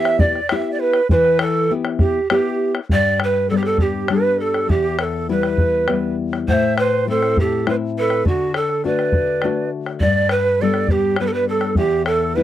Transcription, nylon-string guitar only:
0, 0, Header, 1, 2, 480
1, 0, Start_track
1, 0, Key_signature, 1, "minor"
1, 0, Tempo, 598205
1, 887, Time_signature, 3, 2, 24, 8
1, 4723, Tempo, 588813
1, 10058, End_track
2, 0, Start_track
2, 0, Title_t, "Nylon-string guitar"
2, 0, Program_c, 0, 24
2, 0, Note_on_c, 0, 59, 48
2, 0, Note_on_c, 0, 64, 44
2, 0, Note_on_c, 0, 67, 54
2, 311, Note_off_c, 0, 59, 0
2, 316, Note_off_c, 0, 64, 0
2, 316, Note_off_c, 0, 67, 0
2, 413, Note_on_c, 0, 59, 48
2, 417, Note_on_c, 0, 64, 43
2, 420, Note_on_c, 0, 67, 52
2, 795, Note_off_c, 0, 59, 0
2, 799, Note_off_c, 0, 64, 0
2, 799, Note_off_c, 0, 67, 0
2, 892, Note_on_c, 0, 52, 70
2, 1357, Note_off_c, 0, 52, 0
2, 1369, Note_on_c, 0, 59, 49
2, 1371, Note_on_c, 0, 64, 41
2, 1375, Note_on_c, 0, 67, 51
2, 1754, Note_off_c, 0, 59, 0
2, 1756, Note_off_c, 0, 64, 0
2, 1757, Note_off_c, 0, 67, 0
2, 1851, Note_on_c, 0, 59, 45
2, 1856, Note_on_c, 0, 64, 46
2, 1859, Note_on_c, 0, 67, 52
2, 2236, Note_off_c, 0, 59, 0
2, 2239, Note_off_c, 0, 64, 0
2, 2240, Note_off_c, 0, 67, 0
2, 2336, Note_on_c, 0, 43, 62
2, 2819, Note_on_c, 0, 55, 45
2, 2820, Note_on_c, 0, 59, 42
2, 2822, Note_on_c, 0, 62, 50
2, 3278, Note_off_c, 0, 55, 0
2, 3280, Note_off_c, 0, 59, 0
2, 3282, Note_off_c, 0, 62, 0
2, 3288, Note_on_c, 0, 55, 45
2, 3293, Note_on_c, 0, 59, 42
2, 3299, Note_on_c, 0, 62, 47
2, 3740, Note_off_c, 0, 43, 0
2, 3753, Note_off_c, 0, 55, 0
2, 3756, Note_off_c, 0, 59, 0
2, 3759, Note_off_c, 0, 62, 0
2, 3764, Note_on_c, 0, 40, 58
2, 4246, Note_on_c, 0, 55, 48
2, 4246, Note_on_c, 0, 59, 44
2, 4250, Note_on_c, 0, 64, 50
2, 4709, Note_off_c, 0, 59, 0
2, 4710, Note_off_c, 0, 55, 0
2, 4711, Note_off_c, 0, 64, 0
2, 4719, Note_on_c, 0, 55, 48
2, 4726, Note_on_c, 0, 59, 44
2, 4731, Note_on_c, 0, 64, 52
2, 5173, Note_off_c, 0, 40, 0
2, 5191, Note_off_c, 0, 55, 0
2, 5195, Note_off_c, 0, 59, 0
2, 5196, Note_off_c, 0, 64, 0
2, 5207, Note_on_c, 0, 45, 63
2, 5691, Note_on_c, 0, 57, 46
2, 5696, Note_on_c, 0, 60, 45
2, 5698, Note_on_c, 0, 64, 49
2, 6159, Note_off_c, 0, 57, 0
2, 6161, Note_off_c, 0, 60, 0
2, 6162, Note_off_c, 0, 64, 0
2, 6172, Note_on_c, 0, 57, 45
2, 6176, Note_on_c, 0, 60, 43
2, 6179, Note_on_c, 0, 64, 55
2, 6622, Note_off_c, 0, 45, 0
2, 6639, Note_off_c, 0, 57, 0
2, 6642, Note_off_c, 0, 60, 0
2, 6643, Note_off_c, 0, 64, 0
2, 6649, Note_on_c, 0, 50, 62
2, 7133, Note_on_c, 0, 57, 48
2, 7140, Note_on_c, 0, 62, 45
2, 7142, Note_on_c, 0, 66, 53
2, 7600, Note_off_c, 0, 57, 0
2, 7602, Note_off_c, 0, 62, 0
2, 7604, Note_off_c, 0, 66, 0
2, 7618, Note_on_c, 0, 57, 47
2, 7625, Note_on_c, 0, 62, 42
2, 7629, Note_on_c, 0, 66, 49
2, 8059, Note_off_c, 0, 50, 0
2, 8081, Note_off_c, 0, 57, 0
2, 8085, Note_off_c, 0, 62, 0
2, 8086, Note_off_c, 0, 66, 0
2, 8097, Note_on_c, 0, 43, 63
2, 8579, Note_on_c, 0, 55, 47
2, 8582, Note_on_c, 0, 59, 39
2, 8584, Note_on_c, 0, 62, 50
2, 9039, Note_off_c, 0, 55, 0
2, 9040, Note_off_c, 0, 59, 0
2, 9041, Note_off_c, 0, 62, 0
2, 9054, Note_on_c, 0, 55, 45
2, 9056, Note_on_c, 0, 59, 41
2, 9059, Note_on_c, 0, 62, 50
2, 9495, Note_off_c, 0, 43, 0
2, 9514, Note_off_c, 0, 59, 0
2, 9515, Note_off_c, 0, 55, 0
2, 9517, Note_off_c, 0, 62, 0
2, 9521, Note_on_c, 0, 40, 68
2, 10001, Note_on_c, 0, 55, 47
2, 10007, Note_on_c, 0, 59, 43
2, 10012, Note_on_c, 0, 64, 52
2, 10058, Note_off_c, 0, 40, 0
2, 10058, Note_off_c, 0, 55, 0
2, 10058, Note_off_c, 0, 59, 0
2, 10058, Note_off_c, 0, 64, 0
2, 10058, End_track
0, 0, End_of_file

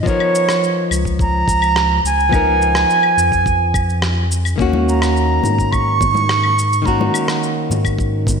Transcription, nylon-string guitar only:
0, 0, Header, 1, 2, 480
1, 0, Start_track
1, 0, Tempo, 566038
1, 53, Time_signature, 4, 2, 24, 8
1, 7123, End_track
2, 0, Start_track
2, 0, Title_t, "Nylon-string guitar"
2, 0, Program_c, 0, 24
2, 26, Note_on_c, 0, 53, 74
2, 44, Note_on_c, 0, 59, 70
2, 61, Note_on_c, 0, 63, 67
2, 79, Note_on_c, 0, 70, 81
2, 1691, Note_off_c, 0, 53, 0
2, 1700, Note_off_c, 0, 59, 0
2, 1708, Note_off_c, 0, 63, 0
2, 1717, Note_off_c, 0, 70, 0
2, 1944, Note_on_c, 0, 53, 75
2, 1961, Note_on_c, 0, 59, 72
2, 1980, Note_on_c, 0, 63, 67
2, 1995, Note_on_c, 0, 70, 78
2, 3610, Note_off_c, 0, 53, 0
2, 3619, Note_off_c, 0, 59, 0
2, 3628, Note_off_c, 0, 63, 0
2, 3635, Note_off_c, 0, 70, 0
2, 3866, Note_on_c, 0, 51, 74
2, 3882, Note_on_c, 0, 58, 65
2, 3899, Note_on_c, 0, 61, 69
2, 3915, Note_on_c, 0, 66, 80
2, 5531, Note_off_c, 0, 51, 0
2, 5539, Note_off_c, 0, 58, 0
2, 5547, Note_off_c, 0, 61, 0
2, 5556, Note_off_c, 0, 66, 0
2, 5783, Note_on_c, 0, 51, 77
2, 5800, Note_on_c, 0, 58, 69
2, 5813, Note_on_c, 0, 61, 65
2, 5834, Note_on_c, 0, 66, 88
2, 7123, Note_off_c, 0, 51, 0
2, 7123, Note_off_c, 0, 58, 0
2, 7123, Note_off_c, 0, 61, 0
2, 7123, Note_off_c, 0, 66, 0
2, 7123, End_track
0, 0, End_of_file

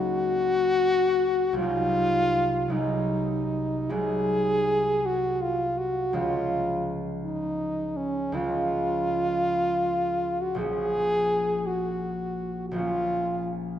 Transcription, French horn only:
0, 0, Header, 1, 2, 480
1, 0, Start_track
1, 0, Key_signature, -5, "major"
1, 0, Tempo, 739827
1, 1028, Time_signature, 12, 3, 24, 8
1, 1510, Tempo, 784314
1, 2950, Tempo, 732601
1, 8919, End_track
2, 0, Start_track
2, 0, Title_t, "French horn"
2, 0, Program_c, 0, 60
2, 0, Note_on_c, 0, 66, 109
2, 1004, Note_off_c, 0, 66, 0
2, 1032, Note_on_c, 0, 65, 114
2, 1747, Note_on_c, 0, 63, 80
2, 1757, Note_off_c, 0, 65, 0
2, 2479, Note_on_c, 0, 68, 100
2, 2488, Note_off_c, 0, 63, 0
2, 3198, Note_on_c, 0, 66, 88
2, 3207, Note_off_c, 0, 68, 0
2, 3435, Note_on_c, 0, 65, 83
2, 3445, Note_off_c, 0, 66, 0
2, 3672, Note_on_c, 0, 66, 81
2, 3682, Note_off_c, 0, 65, 0
2, 3915, Note_on_c, 0, 65, 92
2, 3925, Note_off_c, 0, 66, 0
2, 4453, Note_off_c, 0, 65, 0
2, 4633, Note_on_c, 0, 63, 78
2, 5104, Note_on_c, 0, 61, 81
2, 5114, Note_off_c, 0, 63, 0
2, 5355, Note_on_c, 0, 65, 101
2, 5365, Note_off_c, 0, 61, 0
2, 6708, Note_on_c, 0, 66, 79
2, 6717, Note_off_c, 0, 65, 0
2, 6816, Note_off_c, 0, 66, 0
2, 6822, Note_on_c, 0, 68, 106
2, 7526, Note_on_c, 0, 66, 77
2, 7535, Note_off_c, 0, 68, 0
2, 8195, Note_off_c, 0, 66, 0
2, 8199, Note_on_c, 0, 66, 60
2, 8239, Note_on_c, 0, 65, 100
2, 8249, Note_off_c, 0, 66, 0
2, 8778, Note_off_c, 0, 65, 0
2, 8919, End_track
0, 0, End_of_file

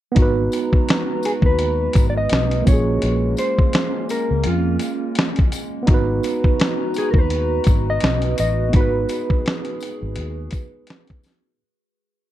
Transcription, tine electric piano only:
0, 0, Header, 1, 2, 480
1, 0, Start_track
1, 0, Tempo, 714286
1, 112, Time_signature, 4, 2, 24, 8
1, 8276, End_track
2, 0, Start_track
2, 0, Title_t, "Tine electric piano"
2, 0, Program_c, 0, 4
2, 79, Note_on_c, 0, 59, 71
2, 102, Note_on_c, 0, 63, 65
2, 127, Note_on_c, 0, 66, 66
2, 149, Note_on_c, 0, 71, 75
2, 227, Control_c, 0, 64, 127
2, 1748, Note_off_c, 0, 59, 0
2, 1760, Note_off_c, 0, 63, 0
2, 1760, Note_on_c, 0, 58, 59
2, 1772, Note_off_c, 0, 66, 0
2, 1783, Note_off_c, 0, 71, 0
2, 1783, Note_on_c, 0, 61, 52
2, 1801, Control_c, 0, 64, 0
2, 1810, Note_on_c, 0, 65, 47
2, 1835, Note_on_c, 0, 68, 66
2, 1906, Control_c, 0, 64, 127
2, 3669, Note_off_c, 0, 58, 0
2, 3680, Note_off_c, 0, 61, 0
2, 3694, Note_off_c, 0, 65, 0
2, 3706, Note_off_c, 0, 68, 0
2, 3916, Note_on_c, 0, 59, 63
2, 3943, Note_on_c, 0, 63, 76
2, 3961, Control_c, 0, 64, 0
2, 3968, Note_on_c, 0, 66, 68
2, 3991, Note_on_c, 0, 71, 76
2, 4061, Control_c, 0, 64, 127
2, 5827, Note_off_c, 0, 59, 0
2, 5840, Note_off_c, 0, 63, 0
2, 5841, Note_on_c, 0, 59, 55
2, 5853, Note_off_c, 0, 66, 0
2, 5865, Note_off_c, 0, 71, 0
2, 5866, Note_on_c, 0, 63, 60
2, 5891, Note_on_c, 0, 66, 54
2, 5918, Note_on_c, 0, 71, 67
2, 7750, Note_off_c, 0, 59, 0
2, 7762, Note_off_c, 0, 63, 0
2, 7775, Note_off_c, 0, 66, 0
2, 7788, Note_off_c, 0, 71, 0
2, 7799, Control_c, 0, 64, 0
2, 8276, End_track
0, 0, End_of_file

